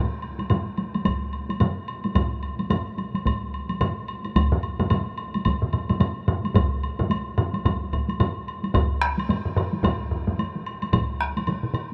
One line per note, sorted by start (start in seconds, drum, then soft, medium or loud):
0.22 high woodblock soft
0.39 taiko high medium
0.39 high woodblock soft
0.50 taiko low-mid medium
0.50 taiko mid medium
0.50 taiko high medium
0.50 high woodblock soft
0.78 taiko high soft
0.78 high woodblock soft
0.95 taiko high medium
0.95 high woodblock soft
1.05 taiko medium
1.05 taiko high medium
1.05 high woodblock soft
1.33 high woodblock soft
1.49 taiko high medium
1.49 high woodblock soft
1.60 taiko low-mid medium
1.60 taiko mid medium
1.60 taiko high medium
1.60 high woodblock soft
1.88 high woodblock soft
2.04 taiko high medium
2.04 high woodblock soft
2.15 taiko medium
2.15 taiko low-mid medium
2.15 taiko mid medium
2.15 taiko high medium
2.15 high woodblock medium
2.43 high woodblock soft
2.59 taiko high medium
2.59 high woodblock soft
2.70 taiko low-mid medium
2.70 taiko mid medium
2.70 taiko high medium
2.70 high woodblock soft
2.98 taiko high soft
2.98 high woodblock soft
3.15 taiko high medium
3.15 high woodblock soft
3.25 taiko medium
3.25 taiko high medium
3.25 high woodblock soft
3.54 high woodblock soft
3.69 taiko high soft
3.69 high woodblock soft
3.81 taiko low-mid medium
3.81 taiko mid medium
3.81 taiko high medium
3.81 high woodblock medium
4.08 high woodblock soft
4.25 taiko high soft
4.25 high woodblock soft
4.36 taiko loud
4.36 taiko high medium
4.36 high woodblock medium
4.52 taiko low-mid medium
4.52 taiko mid medium
4.63 high woodblock soft
4.79 taiko low-mid medium
4.79 taiko mid medium
4.79 taiko high medium
4.79 high woodblock soft
4.90 taiko low-mid medium
4.90 taiko mid medium
4.90 taiko high medium
4.90 high woodblock medium
5.18 high woodblock soft
5.34 taiko high soft
5.34 high woodblock soft
5.45 taiko medium
5.45 taiko low-mid medium
5.45 taiko mid medium
5.45 taiko high medium
5.45 high woodblock soft
5.62 taiko low-mid medium
5.62 taiko mid medium
5.73 taiko low-mid medium
5.73 taiko mid medium
5.73 high woodblock soft
5.89 taiko low-mid medium
5.89 taiko mid medium
5.89 taiko high soft
5.89 high woodblock soft
6.00 taiko low-mid medium
6.00 taiko mid medium
6.00 taiko high medium
6.00 high woodblock soft
6.28 taiko low-mid medium
6.28 taiko mid medium
6.28 high woodblock soft
6.44 taiko high soft
6.44 high woodblock soft
6.55 taiko medium
6.55 taiko low-mid medium
6.55 taiko mid medium
6.55 taiko high medium
6.55 high woodblock medium
6.83 high woodblock soft
6.99 taiko low-mid medium
6.99 taiko mid medium
6.99 taiko high soft
6.99 high woodblock soft
7.10 taiko high medium
7.10 high woodblock soft
7.38 taiko low-mid medium
7.38 taiko mid medium
7.38 high woodblock soft
7.54 taiko high soft
7.54 high woodblock soft
7.65 taiko medium
7.65 taiko low-mid medium
7.65 taiko mid medium
7.65 taiko high medium
7.65 high woodblock soft
7.93 taiko medium
7.93 high woodblock soft
8.09 taiko high soft
8.09 high woodblock soft
8.20 taiko low-mid medium
8.20 taiko mid medium
8.20 taiko high medium
8.20 high woodblock soft
8.48 high woodblock soft
8.63 taiko high soft
8.63 high woodblock soft
8.74 taiko medium
8.74 taiko low-mid medium
8.74 taiko high medium
8.74 high woodblock medium
9.02 taiko rim medium
9.18 taiko high medium
9.18 high woodblock soft
9.29 taiko low-mid medium
9.29 taiko high medium
9.29 high woodblock soft
9.45 taiko low-mid medium
9.57 taiko low-mid loud
9.57 high woodblock soft
9.73 taiko high medium
9.84 taiko medium
9.84 taiko low-mid medium
9.84 taiko high medium
9.84 high woodblock medium
10.11 taiko low-mid medium
10.27 taiko low-mid medium
10.27 taiko high soft
10.39 taiko high medium
10.39 high woodblock soft
10.55 taiko high soft
10.66 high woodblock soft
10.82 taiko high soft
10.82 high woodblock soft
10.93 taiko loud
10.93 taiko mid medium
10.93 taiko high medium
10.93 high woodblock medium
11.21 taiko rim medium
11.37 taiko high soft
11.37 high woodblock soft
11.47 taiko mid medium
11.47 taiko high medium
11.47 high woodblock soft
11.63 taiko mid medium
11.74 taiko mid medium
11.74 high woodblock soft